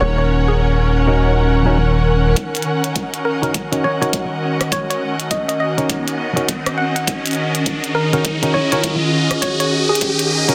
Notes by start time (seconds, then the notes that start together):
Already playing: D#3 C#4 A#4 C#5 F#5
0.01 D#1 C#5
0.18 C#5
0.48 G#4
1.07 C#4 D#4 F#4 A#4
1.66 C#4 D#4 F#4 A#4
2.36 D#3 C#4 F#4, kick, closed hi-hat, riser
2.55 closed hi-hat
2.57 closed hi-hat
2.62 closed hi-hat
2.84 closed hi-hat
2.89 D#5
2.96 kick, closed hi-hat
3.14 closed hi-hat
3.25 A#4
3.42 C#4 D#4 F#4 A#4, closed hi-hat
3.54 kick, closed hi-hat
3.72 C#4 D#4 F#4 A#4, closed hi-hat
3.84 C#5
4.01 C#4 D#4 F#4 A#4 C#5, closed hi-hat
4.13 kick, closed hi-hat
4.61 cross-stick, closed hi-hat
4.72 C#5, kick, closed hi-hat
4.90 C#5, closed hi-hat
5.20 closed hi-hat
5.31 D#5, kick, closed hi-hat
5.48 D#5, closed hi-hat
5.60 D#5
5.78 C#4 D#4 F#4 A#4, closed hi-hat
5.90 kick, closed hi-hat
6.08 closed hi-hat
6.36 C#4 D#4 F#4 A#4, closed hi-hat
6.49 kick, closed hi-hat
6.66 cross-stick, closed hi-hat
6.78 F#5
6.96 F#5, closed hi-hat
7.07 G#4, kick, closed hi-hat
7.26 closed hi-hat
7.27 closed hi-hat
7.31 closed hi-hat
7.33 closed hi-hat
7.35 closed hi-hat
7.55 closed hi-hat
7.66 kick, closed hi-hat
7.84 closed hi-hat
7.95 A#4
8.13 C#4 D#4 F#4 A#4, closed hi-hat
8.25 kick, closed hi-hat
8.42 C#4 D#4 F#4 A#4, closed hi-hat
8.54 C#5
8.72 C#4 D#4 F#4 A#4 C#5, closed hi-hat
8.84 kick, closed hi-hat
9.31 cross-stick, closed hi-hat
9.42 C#5, kick, closed hi-hat
9.60 C#5, closed hi-hat
9.89 G#4
9.95 closed hi-hat
10.01 kick, closed hi-hat
10.19 closed hi-hat
10.48 C#4 D#4 F#4 A#4, closed hi-hat